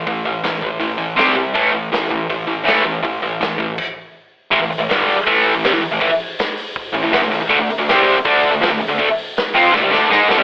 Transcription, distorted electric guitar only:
X:1
M:4/4
L:1/16
Q:1/4=161
K:D
V:1 name="Distorted electric guitar" clef=bass
[A,,E,]2 [A,,E,]2 [A,,E,]2 [A,,E,]2 [A,,E,]2 [A,,E,]2 [=C,G,=C]2 [C,G,]2 | [A,,E,A,]2 [A,,E,]2 [A,,E,]2 [A,,E,]2 [A,,E,]2 [A,,E,]2 [A,,E,A,]2 [A,,E,]2 | [A,,E,]2 [A,,E,]2 [A,,E,]2 [A,,E,]2 z8 | [A,,E,] [A,,E,] z [A,,E,] [G,,D,G,]3 z [A,,E,A,]3 [A,,E,] [=C,G,] [A,,E,] z [A,,E,] |
[A,,E,] z8 z [A,,E,] [A,,E,] [E,B,] [A,,E,] [A,,E,] z | [D,A,] [D,A,] z [D,A,] [=C,G,=C]3 z [D,A,D]3 [D,A,] [=F,C] [D,A,] z [D,A,] | [D,A,] z4 z [=F,=C=F]2 [D,A,] [=C,G,] [D,A,D]2 [^G,^D^G]2 [=D,A,] [C,=G,] |]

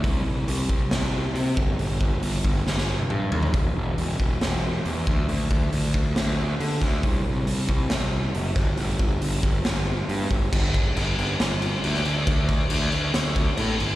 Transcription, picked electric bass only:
X:1
M:4/4
L:1/8
Q:1/4=137
K:G
V:1 name="Picked electric bass" clef=bass
C,, C,, C,, C,, C,,2 C, G,,, | G,,, G,,, G,,, G,,, G,,,2 G,, ^D,, | E,,, E,,, E,,, E,,, E,,,2 E,, D,, | D,, D,, D,, D,, D,,2 D, D,, |
C,, C,, C,, C,, C,,2 F,,, G,,, | G,,, G,,, G,,, G,,, G,,,2 G,, G,,, | G,,,2 G,,, G,,, G,,,2 D,, D,, | D,,2 D,, D,, D,,2 A,, G,,, |]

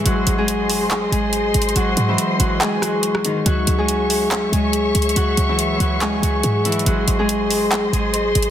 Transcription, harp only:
X:1
M:4/4
L:1/16
Q:1/4=141
K:C#m
V:1 name="Harp"
[F,F]3 [G,G]6- [G,G] [G,G]6 | [F,F]3 [E,E]3 [F,F]2 [G,G]2 [F,F]4 [D,D]2 | [F,F]3 [G,G]6- [G,G] [G,G]6 | [F,F]3 [E,E]3 [F,F]2 [G,G]2 [F,F]4 [E,E]2 |
[F,F]3 [G,G]6- [G,G] [G,G]6 |]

